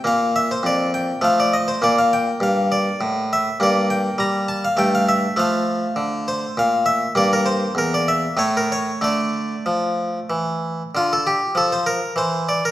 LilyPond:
<<
  \new Staff \with { instrumentName = "Harpsichord" } { \time 3/4 \key g \dorian \tempo 4 = 100 f''8 e''16 c''16 d''8 g''8 f''16 d''16 ees''16 c''16 | d''16 f''16 g''8 f''8 d''8 r8 e''8 | \key d \minor d''8 g''8 bes''8 a''16 f''16 g''16 f''16 e''8 | f''4. c''8 f''8 e''8 |
d''16 bes'16 c''8 bes'16 d''16 e''8 cis''16 bes'16 cis''8 | d''2~ d''8 r8 | f'16 a'16 g'8 a'16 c''16 bes'8 c''8 d''16 bes'16 | }
  \new Staff \with { instrumentName = "Harpsichord" } { \clef bass \time 3/4 \key g \dorian << { bes2 a4 | bes2. | \key d \minor bes2 a4 | a2. |
bes2 a4 | a2. | r2. | } \\ { bes,4 f,4 f4 | bes,4 g,4 a,4 | g,4 g4 g,4 | f4 d4 bes,4 |
g,4 e,4 a,4 | d4 f4 e4 | d4 f4 e4 | } >> }
>>